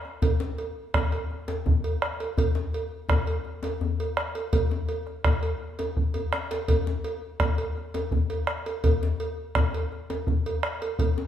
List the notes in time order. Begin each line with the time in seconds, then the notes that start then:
0.05 djembe slap
0.22 bombo low, cowbell, djembe bass
0.40 djembe slap, djembe tone
0.58 cowbell, djembe slap
0.94 bombo rim, bombo low, cowbell, djembe bass
1.12 cowbell
1.31 djembe slap
1.48 bombo rim, cowbell, djembe slap, djembe tone
1.66 bombo low, djembe bass
1.84 cowbell
2.02 bombo rim
2.20 cowbell, djembe slap
2.37 bombo low, cowbell, djembe bass
2.55 djembe slap, djembe tone
2.73 cowbell, djembe slap
3.09 bombo rim, bombo low, cowbell, djembe bass
3.27 cowbell
3.45 djembe slap
3.63 bombo rim, cowbell, djembe slap, djembe tone
3.81 djembe bass
4.00 cowbell
4.17 bombo rim
4.35 cowbell, djembe slap
4.53 bombo low, cowbell, djembe slap, djembe bass
4.71 djembe slap, djembe tone
4.89 cowbell
5.07 bombo rim, djembe slap
5.24 bombo rim, bombo low, cowbell, djembe slap, djembe bass
5.43 cowbell
5.79 cowbell, djembe slap, djembe tone
5.97 bombo low, djembe bass
6.14 cowbell, djembe bass
6.33 bombo rim, djembe slap
6.51 cowbell, djembe slap
6.68 bombo low, cowbell, djembe bass
6.87 djembe slap, djembe tone
7.04 cowbell, djembe slap
7.40 bombo rim, bombo low, cowbell, djembe bass
7.58 cowbell
7.77 djembe slap
7.94 bombo rim, cowbell, djembe slap, djembe tone
8.11 bombo low, djembe bass
8.30 cowbell
8.47 bombo rim
8.66 cowbell, djembe slap
8.84 bombo low, cowbell, djembe bass
9.03 djembe slap, djembe tone
9.20 cowbell, djembe slap
9.55 bombo rim, bombo low, cowbell, djembe bass
9.74 cowbell
9.92 djembe slap
10.10 bombo rim, cowbell, djembe slap, djembe tone
10.27 bombo low, djembe bass
10.46 cowbell
10.63 bombo rim
10.82 cowbell, djembe slap
10.99 bombo low, cowbell, djembe bass
11.18 djembe slap, djembe tone